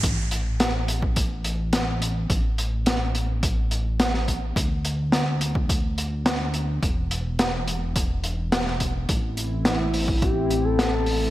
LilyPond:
<<
  \new Staff \with { instrumentName = "Analog synth lead" } { \time 4/4 \key a \minor \tempo 4 = 106 r1 | r1 | r1 | r1 |
r4 e'4 g'8. a'4~ a'16 | }
  \new Staff \with { instrumentName = "Analog synth pad" } { \time 4/4 \key a \minor r1 | r1 | r1 | r1 |
<a c' e'>1 | }
  \new Staff \with { instrumentName = "Analog synth bass" } { \clef bass \time 4/4 \key a \minor a,,1 | a,,1 | d,1 | e,,1 |
a,,1 | }
  \new DrumStaff \with { instrumentName = "Drums" } \drummode { \time 4/4 <hh bd>8 hh8 <hh sn>8 hh16 bd16 <hh bd>8 hh8 <hh sn>8 hh8 | <hh bd>8 hh8 <hh sn>8 hh8 <hh bd>8 hh8 <hh sn>16 sn16 <hh bd>8 | <hh bd>8 hh8 <hh sn>8 hh16 bd16 <hh bd>8 hh8 <hh sn>8 hh8 | <hh bd>8 hh8 <hh sn>8 hh8 <hh bd>8 hh8 <hh sn>16 sn16 <hh bd>8 |
<hh bd>8 hh8 <hh sn>8 hho16 bd16 <hh bd>8 hh8 <hh sn>8 hho8 | }
>>